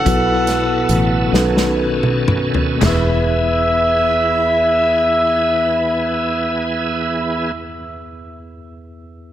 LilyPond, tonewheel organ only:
\new Staff \with { instrumentName = "Tonewheel organ" } { \time 6/8 \key e \major \tempo 4. = 37 <fis b e' a'>4. <dis b cis' a'>4. | <e b e' gis'>2.~ | <e b e' gis'>2. | }